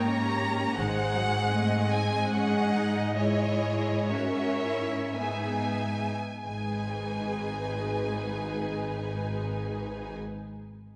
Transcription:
0, 0, Header, 1, 6, 480
1, 0, Start_track
1, 0, Key_signature, 5, "minor"
1, 0, Tempo, 729927
1, 504, Time_signature, 3, 2, 24, 8
1, 995, Tempo, 800000
1, 1475, Tempo, 849858
1, 1955, Tempo, 937500
1, 2435, Tempo, 1084991
1, 2915, Tempo, 1263158
1, 3395, Tempo, 1197605
1, 5203, End_track
2, 0, Start_track
2, 0, Title_t, "Violin section"
2, 0, Program_c, 0, 48
2, 38, Note_on_c, 0, 82, 74
2, 506, Note_off_c, 0, 82, 0
2, 515, Note_on_c, 0, 78, 85
2, 1237, Note_off_c, 0, 78, 0
2, 1239, Note_on_c, 0, 80, 78
2, 1467, Note_on_c, 0, 78, 70
2, 1478, Note_off_c, 0, 80, 0
2, 1951, Note_off_c, 0, 78, 0
2, 1961, Note_on_c, 0, 73, 67
2, 2429, Note_off_c, 0, 73, 0
2, 2444, Note_on_c, 0, 76, 62
2, 2919, Note_off_c, 0, 76, 0
2, 2919, Note_on_c, 0, 80, 51
2, 3386, Note_off_c, 0, 80, 0
2, 3391, Note_on_c, 0, 80, 49
2, 4884, Note_off_c, 0, 80, 0
2, 5203, End_track
3, 0, Start_track
3, 0, Title_t, "Violin section"
3, 0, Program_c, 1, 48
3, 0, Note_on_c, 1, 73, 49
3, 30, Note_on_c, 1, 67, 50
3, 491, Note_off_c, 1, 73, 0
3, 502, Note_off_c, 1, 67, 0
3, 508, Note_on_c, 1, 72, 48
3, 511, Note_on_c, 1, 68, 50
3, 997, Note_off_c, 1, 72, 0
3, 999, Note_on_c, 1, 75, 50
3, 1460, Note_off_c, 1, 68, 0
3, 1466, Note_off_c, 1, 75, 0
3, 1473, Note_on_c, 1, 75, 57
3, 1477, Note_on_c, 1, 68, 52
3, 1947, Note_off_c, 1, 68, 0
3, 1956, Note_on_c, 1, 68, 46
3, 2416, Note_off_c, 1, 75, 0
3, 2426, Note_off_c, 1, 68, 0
3, 2430, Note_on_c, 1, 73, 46
3, 2432, Note_on_c, 1, 70, 43
3, 2912, Note_off_c, 1, 73, 0
3, 2913, Note_off_c, 1, 70, 0
3, 2913, Note_on_c, 1, 76, 39
3, 2914, Note_on_c, 1, 68, 40
3, 3261, Note_off_c, 1, 76, 0
3, 3268, Note_off_c, 1, 68, 0
3, 3394, Note_on_c, 1, 71, 39
3, 3395, Note_on_c, 1, 68, 38
3, 4888, Note_off_c, 1, 68, 0
3, 4888, Note_off_c, 1, 71, 0
3, 5203, End_track
4, 0, Start_track
4, 0, Title_t, "Viola section"
4, 0, Program_c, 2, 48
4, 0, Note_on_c, 2, 58, 50
4, 36, Note_on_c, 2, 61, 50
4, 269, Note_off_c, 2, 61, 0
4, 276, Note_on_c, 2, 61, 50
4, 488, Note_off_c, 2, 58, 0
4, 503, Note_off_c, 2, 61, 0
4, 506, Note_on_c, 2, 56, 48
4, 507, Note_on_c, 2, 63, 47
4, 741, Note_off_c, 2, 56, 0
4, 749, Note_on_c, 2, 54, 50
4, 996, Note_off_c, 2, 63, 0
4, 997, Note_off_c, 2, 54, 0
4, 999, Note_on_c, 2, 60, 48
4, 1001, Note_on_c, 2, 57, 53
4, 1230, Note_off_c, 2, 57, 0
4, 1242, Note_on_c, 2, 56, 47
4, 1467, Note_off_c, 2, 60, 0
4, 1475, Note_on_c, 2, 61, 55
4, 1710, Note_off_c, 2, 61, 0
4, 1712, Note_on_c, 2, 63, 49
4, 1946, Note_off_c, 2, 56, 0
4, 1953, Note_on_c, 2, 56, 45
4, 1956, Note_off_c, 2, 63, 0
4, 1956, Note_on_c, 2, 64, 50
4, 2424, Note_off_c, 2, 56, 0
4, 2426, Note_off_c, 2, 64, 0
4, 2436, Note_on_c, 2, 61, 45
4, 2436, Note_on_c, 2, 66, 44
4, 2661, Note_off_c, 2, 66, 0
4, 2666, Note_on_c, 2, 64, 39
4, 2912, Note_on_c, 2, 63, 37
4, 2913, Note_on_c, 2, 59, 38
4, 2915, Note_off_c, 2, 61, 0
4, 2915, Note_off_c, 2, 64, 0
4, 3268, Note_off_c, 2, 59, 0
4, 3268, Note_off_c, 2, 63, 0
4, 3394, Note_on_c, 2, 56, 36
4, 3396, Note_on_c, 2, 63, 34
4, 4888, Note_off_c, 2, 56, 0
4, 4889, Note_off_c, 2, 63, 0
4, 5203, End_track
5, 0, Start_track
5, 0, Title_t, "Cello section"
5, 0, Program_c, 3, 48
5, 0, Note_on_c, 3, 44, 50
5, 482, Note_off_c, 3, 44, 0
5, 500, Note_on_c, 3, 44, 60
5, 3252, Note_off_c, 3, 44, 0
5, 3391, Note_on_c, 3, 44, 40
5, 4884, Note_off_c, 3, 44, 0
5, 5203, End_track
6, 0, Start_track
6, 0, Title_t, "Double bass section"
6, 0, Program_c, 4, 48
6, 503, Note_on_c, 4, 32, 51
6, 969, Note_off_c, 4, 32, 0
6, 3395, Note_on_c, 4, 32, 38
6, 4888, Note_off_c, 4, 32, 0
6, 5203, End_track
0, 0, End_of_file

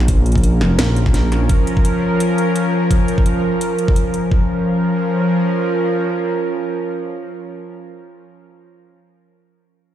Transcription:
0, 0, Header, 1, 4, 480
1, 0, Start_track
1, 0, Key_signature, -5, "minor"
1, 0, Tempo, 352941
1, 109, Time_signature, 4, 2, 24, 8
1, 13531, End_track
2, 0, Start_track
2, 0, Title_t, "Synth drone"
2, 0, Program_c, 0, 95
2, 0, Note_on_c, 0, 53, 80
2, 0, Note_on_c, 0, 61, 73
2, 0, Note_on_c, 0, 70, 92
2, 5815, Note_off_c, 0, 53, 0
2, 5816, Note_off_c, 0, 70, 0
2, 5817, Note_off_c, 0, 61, 0
2, 5864, Note_on_c, 0, 53, 80
2, 5864, Note_on_c, 0, 61, 72
2, 5864, Note_on_c, 0, 70, 89
2, 10388, Note_off_c, 0, 53, 0
2, 10388, Note_off_c, 0, 70, 0
2, 10389, Note_off_c, 0, 61, 0
2, 13531, End_track
3, 0, Start_track
3, 0, Title_t, "Detuned saw bass"
3, 0, Program_c, 1, 39
3, 0, Note_on_c, 1, 34, 94
3, 833, Note_on_c, 1, 29, 91
3, 854, Note_off_c, 1, 34, 0
3, 1054, Note_off_c, 1, 29, 0
3, 1075, Note_on_c, 1, 34, 100
3, 2018, Note_off_c, 1, 34, 0
3, 13531, End_track
4, 0, Start_track
4, 0, Title_t, "Drums"
4, 5, Note_on_c, 9, 40, 38
4, 112, Note_on_c, 9, 42, 80
4, 113, Note_on_c, 9, 36, 117
4, 141, Note_off_c, 9, 40, 0
4, 248, Note_off_c, 9, 42, 0
4, 249, Note_off_c, 9, 36, 0
4, 352, Note_on_c, 9, 42, 36
4, 434, Note_off_c, 9, 42, 0
4, 434, Note_on_c, 9, 42, 30
4, 483, Note_on_c, 9, 36, 106
4, 513, Note_off_c, 9, 42, 0
4, 513, Note_on_c, 9, 42, 24
4, 592, Note_off_c, 9, 42, 0
4, 592, Note_on_c, 9, 42, 69
4, 619, Note_off_c, 9, 36, 0
4, 728, Note_off_c, 9, 42, 0
4, 830, Note_on_c, 9, 40, 61
4, 966, Note_off_c, 9, 40, 0
4, 1070, Note_on_c, 9, 38, 124
4, 1070, Note_on_c, 9, 42, 86
4, 1206, Note_off_c, 9, 38, 0
4, 1206, Note_off_c, 9, 42, 0
4, 1312, Note_on_c, 9, 42, 37
4, 1442, Note_on_c, 9, 40, 36
4, 1444, Note_on_c, 9, 36, 109
4, 1448, Note_off_c, 9, 42, 0
4, 1551, Note_on_c, 9, 38, 37
4, 1551, Note_on_c, 9, 42, 68
4, 1578, Note_off_c, 9, 40, 0
4, 1580, Note_off_c, 9, 36, 0
4, 1687, Note_off_c, 9, 38, 0
4, 1687, Note_off_c, 9, 42, 0
4, 1794, Note_on_c, 9, 40, 52
4, 1794, Note_on_c, 9, 42, 38
4, 1930, Note_off_c, 9, 40, 0
4, 1930, Note_off_c, 9, 42, 0
4, 2032, Note_on_c, 9, 42, 78
4, 2034, Note_on_c, 9, 36, 120
4, 2168, Note_off_c, 9, 42, 0
4, 2170, Note_off_c, 9, 36, 0
4, 2274, Note_on_c, 9, 42, 38
4, 2405, Note_on_c, 9, 36, 109
4, 2410, Note_off_c, 9, 42, 0
4, 2513, Note_on_c, 9, 42, 66
4, 2541, Note_off_c, 9, 36, 0
4, 2649, Note_off_c, 9, 42, 0
4, 2997, Note_on_c, 9, 42, 83
4, 3133, Note_off_c, 9, 42, 0
4, 3239, Note_on_c, 9, 42, 35
4, 3375, Note_off_c, 9, 42, 0
4, 3476, Note_on_c, 9, 42, 64
4, 3612, Note_off_c, 9, 42, 0
4, 3953, Note_on_c, 9, 36, 119
4, 3955, Note_on_c, 9, 42, 78
4, 4089, Note_off_c, 9, 36, 0
4, 4091, Note_off_c, 9, 42, 0
4, 4192, Note_on_c, 9, 42, 35
4, 4324, Note_on_c, 9, 36, 107
4, 4328, Note_off_c, 9, 42, 0
4, 4431, Note_on_c, 9, 42, 64
4, 4460, Note_off_c, 9, 36, 0
4, 4567, Note_off_c, 9, 42, 0
4, 4912, Note_on_c, 9, 42, 77
4, 5048, Note_off_c, 9, 42, 0
4, 5148, Note_on_c, 9, 42, 35
4, 5281, Note_on_c, 9, 36, 113
4, 5284, Note_off_c, 9, 42, 0
4, 5387, Note_on_c, 9, 42, 62
4, 5417, Note_off_c, 9, 36, 0
4, 5523, Note_off_c, 9, 42, 0
4, 5628, Note_on_c, 9, 42, 34
4, 5764, Note_off_c, 9, 42, 0
4, 5869, Note_on_c, 9, 36, 108
4, 6005, Note_off_c, 9, 36, 0
4, 13531, End_track
0, 0, End_of_file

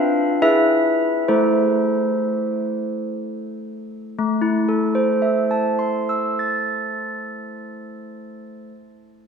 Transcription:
0, 0, Header, 1, 2, 480
1, 0, Start_track
1, 0, Key_signature, 0, "minor"
1, 0, Tempo, 852273
1, 717, Time_signature, 3, 2, 24, 8
1, 717, Tempo, 940439
1, 1677, Tempo, 1020408
1, 4555, End_track
2, 0, Start_track
2, 0, Title_t, "Handbells"
2, 0, Program_c, 0, 14
2, 0, Note_on_c, 0, 62, 57
2, 0, Note_on_c, 0, 65, 48
2, 0, Note_on_c, 0, 71, 44
2, 0, Note_on_c, 0, 77, 78
2, 216, Note_off_c, 0, 77, 0
2, 220, Note_off_c, 0, 62, 0
2, 221, Note_off_c, 0, 65, 0
2, 221, Note_off_c, 0, 71, 0
2, 236, Note_on_c, 0, 71, 44
2, 237, Note_on_c, 0, 64, 56
2, 238, Note_on_c, 0, 76, 87
2, 241, Note_on_c, 0, 68, 50
2, 703, Note_off_c, 0, 76, 0
2, 707, Note_off_c, 0, 71, 0
2, 708, Note_off_c, 0, 64, 0
2, 710, Note_off_c, 0, 68, 0
2, 722, Note_on_c, 0, 72, 60
2, 723, Note_on_c, 0, 64, 39
2, 725, Note_on_c, 0, 57, 43
2, 725, Note_on_c, 0, 69, 40
2, 1660, Note_off_c, 0, 72, 0
2, 2141, Note_off_c, 0, 64, 0
2, 2142, Note_off_c, 0, 57, 0
2, 2142, Note_off_c, 0, 69, 0
2, 2162, Note_on_c, 0, 57, 53
2, 2270, Note_on_c, 0, 64, 47
2, 2397, Note_on_c, 0, 69, 48
2, 2522, Note_on_c, 0, 72, 49
2, 2649, Note_on_c, 0, 76, 43
2, 2784, Note_on_c, 0, 81, 45
2, 2916, Note_on_c, 0, 84, 39
2, 3059, Note_on_c, 0, 88, 41
2, 3200, Note_on_c, 0, 93, 43
2, 4287, Note_off_c, 0, 64, 0
2, 4288, Note_off_c, 0, 93, 0
2, 4290, Note_off_c, 0, 57, 0
2, 4290, Note_off_c, 0, 84, 0
2, 4290, Note_off_c, 0, 88, 0
2, 4291, Note_off_c, 0, 69, 0
2, 4291, Note_off_c, 0, 72, 0
2, 4291, Note_off_c, 0, 76, 0
2, 4292, Note_off_c, 0, 81, 0
2, 4555, End_track
0, 0, End_of_file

